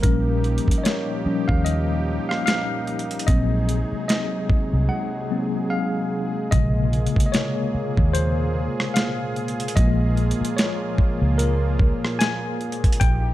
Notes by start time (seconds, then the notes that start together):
Already playing: A#2 A#3
0.03 A#1 F3 G3 C#4 D#4 G4 A#4, kick, closed hi-hat
0.44 closed hi-hat
0.58 closed hi-hat
0.68 muted fingered electric bass stroke, kick, closed hi-hat
0.78 D#5
0.84 C#5, snare, closed hi-hat
1.25 F3 G3 C#4, muted fingered electric bass stroke
1.48 D#2 F5, kick
1.64 D#5, closed hi-hat
2.29 F5, cross-stick
2.46 F5, snare, closed hi-hat
2.87 closed hi-hat
2.99 closed hi-hat
3.11 closed hi-hat
3.19 closed hi-hat
3.27 A#1 C3 F#3 G#3 A#3 C4 G#4 D#5, kick, closed hi-hat
3.69 closed hi-hat
3.92 muted fingered electric bass stroke
4.08 D#5, snare, closed hi-hat
4.50 muted fingered electric bass stroke, kick
4.73 C2
4.89 F#5
5.31 F#3 A#3 C4
5.70 F5
6.51 A#1 A#2 C3 C#3 G#3 A#3 F4 D#5, kick, closed hi-hat
6.93 closed hi-hat
7.07 closed hi-hat
7.16 muted fingered electric bass stroke, kick, closed hi-hat
7.26 D#5
7.32 C#5, snare, closed hi-hat
7.75 muted fingered electric bass stroke
7.97 D#2, kick
8.13 C5, closed hi-hat
8.80 cross-stick
8.94 F5, snare, closed hi-hat
9.36 closed hi-hat
9.48 closed hi-hat
9.60 closed hi-hat
9.68 closed hi-hat
9.76 A#1 F3 G#3 A#3 D#5, kick, closed hi-hat
10.17 closed hi-hat
10.31 closed hi-hat
10.41 muted fingered electric bass stroke, closed hi-hat
10.57 C#5, snare, closed hi-hat
10.98 muted fingered electric bass stroke, kick
11.22 C#2
11.38 A#4, closed hi-hat
11.79 kick
12.05 cross-stick
12.19 G#5, snare, closed hi-hat
12.61 closed hi-hat
12.72 closed hi-hat
12.84 kick, closed hi-hat
12.93 closed hi-hat
13.00 A#1 F3 A#3 D#4 G4 G5, kick, closed hi-hat